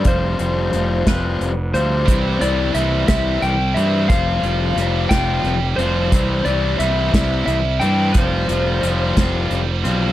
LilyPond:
<<
  \new Staff \with { instrumentName = "Lead electric guitar" } { \time 6/8 \key f \lydian \tempo 4. = 59 c''4. b'4 c''8~ | c''8 d''8 e''8 e''8 g''8 e''8 | f''4. g''4 c''8~ | c''8 d''8 e''4 e''8 g''8 |
c''2~ c''8 r8 | }
  \new Staff \with { instrumentName = "Distorted electric guitar" } { \time 6/8 \key f \lydian <f g c' f'>8 <f g c' f'>8 <f g c' f'>8 <f g c' f'>8 r8 <f g c' f'>8 | <e g c' e'>8 <e g c' e'>8 <e g c' e'>8 <e g c' e'>8 r8 <e g c' e'>8 | <f g c' f'>8 <f g c' f'>8 <f g c' f'>8 <f g c' f'>8 r8 <f g c' f'>8 | <e g c' e'>8 <e g c' e'>8 <e g c' e'>8 <e g c' e'>8 r8 <e g c' e'>8 |
<f g c' f'>8 <f g c' f'>8 <f g c' f'>8 <f g c' f'>8 r8 <f g c' f'>8 | }
  \new Staff \with { instrumentName = "Distorted electric guitar" } { \clef bass \time 6/8 \key f \lydian r2. | c8 e8 g8 e'8 g8 c'8 | f8 f8 g8 f'8 g8 c'8 | c8 e8 g8 e'8 g8 c'8 |
f8 f8 g8 f'8 g8 c'8 | }
  \new Staff \with { instrumentName = "Fingered electric bass" } { \clef bass \time 6/8 \key f \lydian f,,8 f,,8 f,,8 f,,8 f,,8 d,8 | c,8 c,8 c,8 c,8 c,8 g,8 | f,,8 f,,8 f,,8 f,,8 f,,8 f,,8 | c,8 c,8 c,8 c,8 c,8 g,8 |
f,,8 f,,8 f,,8 f,,8 f,,8 b,,8 | }
  \new DrumStaff \with { instrumentName = "Drums" } \drummode { \time 6/8 <hh bd>8 hh8 hh8 <hh bd sn>8 hh8 hh8 | <hh bd>8 hh8 hh8 <hh bd sn>8 hh8 hh8 | <hh bd>8 hh8 hh8 <hh bd sn>8 hh8 hh8 | <hh bd>8 hh8 hh8 <hh bd sn>8 hh8 hh8 |
<hh bd>8 hh8 hh8 <hh bd sn>8 hh8 hh8 | }
>>